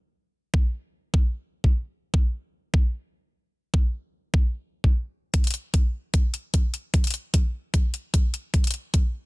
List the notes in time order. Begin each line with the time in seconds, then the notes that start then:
0.54 kick
1.14 kick
1.64 kick
2.14 kick
2.74 kick
3.74 kick
4.34 kick
4.84 kick
5.34 kick, closed hi-hat
5.44 closed hi-hat
5.47 closed hi-hat
5.51 closed hi-hat
5.54 closed hi-hat
5.74 kick, closed hi-hat
6.14 kick, closed hi-hat
6.34 closed hi-hat
6.54 kick, closed hi-hat
6.74 closed hi-hat
6.94 kick, closed hi-hat
7.04 closed hi-hat
7.07 closed hi-hat
7.11 closed hi-hat
7.14 closed hi-hat
7.34 kick, closed hi-hat
7.74 kick, closed hi-hat
7.94 closed hi-hat
8.14 kick, closed hi-hat
8.34 closed hi-hat
8.54 kick, closed hi-hat
8.64 closed hi-hat
8.67 closed hi-hat
8.71 closed hi-hat
8.74 closed hi-hat
8.94 kick, closed hi-hat